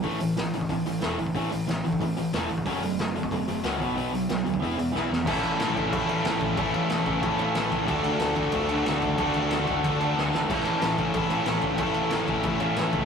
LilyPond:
<<
  \new Staff \with { instrumentName = "Distorted electric guitar" } { \time 4/4 \key a \major \tempo 4 = 184 r1 | r1 | r1 | r1 |
<a, e a cis' e' a'>4. <a, e a cis' e' a'>2~ <a, e a cis' e' a'>8 | <a, e a cis' e' a'>4. <a, e a cis' e' a'>2~ <a, e a cis' e' a'>8 | <d a d' fis' a'>4. <d a d' fis' a'>2~ <d a d' fis' a'>8 | <d a d' fis' a'>4. <d a d' fis' a'>2~ <d a d' fis' a'>8 |
<a, e a cis' e' a'>4. <a, e a cis' e' a'>2~ <a, e a cis' e' a'>8 | <a, e a cis' e' a'>4. <a, e a cis' e' a'>2~ <a, e a cis' e' a'>8 | }
  \new Staff \with { instrumentName = "Distorted electric guitar" } { \time 4/4 \key a \major <a, e a>8 <a, e>8 <a, e>8 <a, e>8 <a, e>8 <a, e>8 <a, e a>8 <a, e>8 | <a, e a>8 <a, e>8 <a, e>8 <a, e>8 <a, e>8 <a, e>8 <a, e a>8 <a, e>8 | <fis a cis'>8 <fis a>8 <fis a>8 <fis a>8 <fis a>8 <fis a>8 <fis a cis'>8 <b, fis b>8 | <b, fis b>8 <b, fis>8 <b, fis>8 <b, fis>8 <e b e'>8 <e b>8 <e b e'>8 <e b>8 |
<a, e a cis' e' a'>2~ <a, e a cis' e' a'>8 <a, e a cis' e' a'>8 <a, e a cis' e' a'>4 | <a, e a cis' e' a'>2~ <a, e a cis' e' a'>8 <a, e a cis' e' a'>8 <a, e a cis' e' a'>4 | <d a d' fis' a'>2~ <d a d' fis' a'>8 <d a d' fis' a'>8 <d a d' fis' a'>4 | <d a d' fis' a'>2~ <d a d' fis' a'>8 <d a d' fis' a'>8 <d a d' fis' a'>4 |
<a, e a cis' e' a'>2~ <a, e a cis' e' a'>8 <a, e a cis' e' a'>8 <a, e a cis' e' a'>4 | <a, e a cis' e' a'>2~ <a, e a cis' e' a'>8 <a, e a cis' e' a'>8 <a, e a cis' e' a'>4 | }
  \new Staff \with { instrumentName = "Distorted electric guitar" } { \clef bass \time 4/4 \key a \major <a, e a>8 <a, e>8 <a, e>8 <a, e>8 <a, e>8 <a, e>8 <a, e a>8 <a, e>8 | <a, e a>8 <a, e>8 <a, e>8 <a, e>8 <a, e>8 <a, e>8 <a, e a>8 <a, e>8 | <fis a cis'>8 <fis a>8 <fis a>8 <fis a>8 <fis a>8 <fis a>8 <fis a cis'>8 <b, fis b>8 | <b, fis b>8 <b, fis>8 <b, fis>8 <b, fis>8 <e b e'>8 <e b>8 <e b e'>8 <e b>8 |
<a, e a cis' e' a'>2 <a, e a cis' e' a'>2 | <a, e a cis' e' a'>2 <a, e a cis' e' a'>2 | <d a d' fis' a'>2 <d a d' fis' a'>2 | <d a d' fis' a'>2 <d a d' fis' a'>2 |
<a, e a cis' e' a'>2 <a, e a cis' e' a'>2 | <a, e a cis' e' a'>2 <a, e a cis' e' a'>2 | }
  \new Staff \with { instrumentName = "Picked electric bass" } { \clef bass \time 4/4 \key a \major a,,8 a,,8 a,,8 a,,8 a,,8 a,,8 e,,8 a,,8 | a,,8 a,,8 a,,8 a,,8 a,,8 a,,8 e,,8 a,,8 | fis,,8 fis,,8 fis,,8 fis,,8 fis,,8 fis,,8 cis,8 b,,8 | b,,8 b,,8 b,,8 d,8 e,,8 e,,8 b,,8 e,,8 |
a,,8 a,,8 a,,8 a,,8 a,,4 a,,8 a,,8 | a,,8 a,,8 a,,8 a,,8 a,,4 a,,8 a,,8 | d,8 d,8 d,8 d,8 d,4 d,8 d,8 | d,8 d,8 d,8 d,8 d,4 d,8 gis,,8 |
a,,8 a,,8 a,,8 a,,8 a,,4 a,,8 a,,8 | a,,8 a,,8 a,,8 a,,8 a,,4 a,,8 cis,8 | }
  \new DrumStaff \with { instrumentName = "Drums" } \drummode { \time 4/4 <hho bd>8 hho8 <hho sn>8 hho16 bd16 <hho bd>8 hho8 <hho sn>8 hho16 bd16 | <hho bd>8 hho8 <hho sn>8 hho16 bd16 <hho bd>8 hho8 <hho sn>8 hho16 bd16 | <hho bd>8 hho8 <hho sn>8 hho16 bd16 <hho bd>8 hho8 <hho sn>8 <hho bd>8 | hho8 hho8 <hho sn>8 hho16 bd16 <hho bd>8 hho8 sn8 sn8 |
<cymc bd>8 cymc8 <cymc sn>8 <cymc bd>8 <cymc bd>8 cymc8 <cymc sn>8 <cymc bd>8 | <cymc bd>8 cymc8 <cymc sn>8 <cymc bd>8 <cymc bd>8 cymc8 <cymc sn>8 <cymc bd>8 | <cymc bd>8 cymc8 <cymc sn>8 <cymc bd>8 <cymc bd>8 cymc8 <cymc sn>8 <cymc bd>8 | <cymc bd>8 cymc8 <cymc sn>8 <cymc bd>8 <cymc bd>8 cymc8 sn8 sn8 |
<cymc bd>8 cymc8 <cymc sn>8 <cymc bd>8 <cymc bd>8 cymc8 <cymc sn>8 <cymc bd>8 | <cymc bd>8 cymc8 <cymc sn>8 <cymc bd>8 <cymc bd>8 cymc8 <cymc sn>8 <cymc bd>8 | }
>>